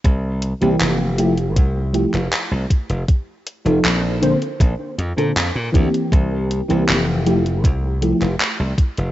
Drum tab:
HH |x-xxx-xxx-xxx-xx|x-xxx-xxx-xxx-xx|x-xxx-xxx-xxx-xx|
CP |----x------xx---|----x-------x---|----x------xx---|
BD |o-------o-----o-|o-------o-----o-|o-------o-----o-|